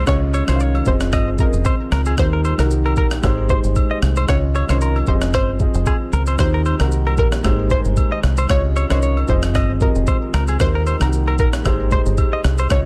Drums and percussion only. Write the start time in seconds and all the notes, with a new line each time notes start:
0.07 kick, cross-stick, shaker
0.34 high agogo, shaker
0.48 cross-stick, shaker
0.60 shaker
0.75 high agogo
0.86 kick, shaker
1.01 cross-stick, shaker
1.13 kick, cross-stick, high agogo, shaker
1.39 kick, shaker
1.53 shaker
1.65 kick, high agogo, shaker
1.92 cross-stick, shaker
2.06 high agogo, shaker
2.18 kick, cross-stick, shaker
2.45 high agogo, shaker
2.59 cross-stick, shaker
2.71 shaker
2.86 high agogo
2.97 kick, shaker
3.11 cross-stick, shaker
3.23 kick, cross-stick, high agogo, shaker
3.49 kick, shaker
3.64 shaker
3.76 kick, high agogo, shaker
4.03 cross-stick, shaker
4.16 high agogo, shaker
4.29 kick, cross-stick, shaker
4.55 high agogo, shaker
4.69 cross-stick, shaker
4.81 low woodblock, shaker
4.96 high agogo
5.07 kick, shaker
5.22 cross-stick, shaker
5.34 kick, cross-stick, high agogo, shaker
5.60 kick, shaker
5.75 shaker
5.86 kick, high agogo, low woodblock, shaker
6.13 shaker
6.27 high agogo, shaker
6.39 kick, cross-stick, shaker
6.66 high agogo, shaker
6.80 cross-stick, shaker
6.92 shaker
7.07 high agogo
7.18 kick, shaker
7.32 cross-stick, shaker
7.44 kick, cross-stick, high agogo, shaker
7.70 kick, shaker
7.85 shaker
7.97 kick, high agogo, shaker
8.23 cross-stick, shaker
8.37 high agogo, shaker
8.50 kick, cross-stick, shaker
8.76 high agogo, shaker
8.90 cross-stick, shaker
9.03 shaker
9.17 high agogo
9.28 kick, shaker
9.43 cross-stick, shaker
9.55 kick, cross-stick, high agogo, shaker
9.81 kick, shaker
9.96 shaker
10.07 kick, high agogo, shaker
10.34 cross-stick, shaker
10.48 high agogo, shaker
10.60 kick, cross-stick, shaker
10.87 high agogo, shaker
11.01 cross-stick, shaker
11.13 shaker
11.27 high agogo
11.39 kick, shaker
11.53 cross-stick, shaker
11.65 kick, cross-stick, high agogo, shaker
11.91 kick, shaker
12.06 shaker
12.18 kick, high agogo, shaker
12.44 cross-stick, shaker
12.58 high agogo, shaker
12.70 kick, cross-stick, shaker